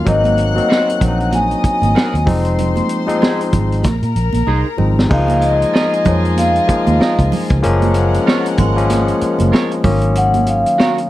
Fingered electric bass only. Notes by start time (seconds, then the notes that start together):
0.06 G#1
1.01 A#1
1.64 muted fingered electric bass stroke
1.82 G#1
1.96 muted fingered electric bass stroke
2.14 D#2
2.27 F1
3.53 G#1
3.84 A#1
4.02 A#2
4.16 A#1
4.34 A#1
4.47 C2
4.79 G#1
5.11 C#2
6.06 F2
6.69 muted fingered electric bass stroke
6.87 D#2
7.00 muted fingered electric bass stroke
7.19 C#2
7.50 C#2
7.65 F#1
8.58 G#1
9.22 muted fingered electric bass stroke
9.40 F#1
9.85 G#1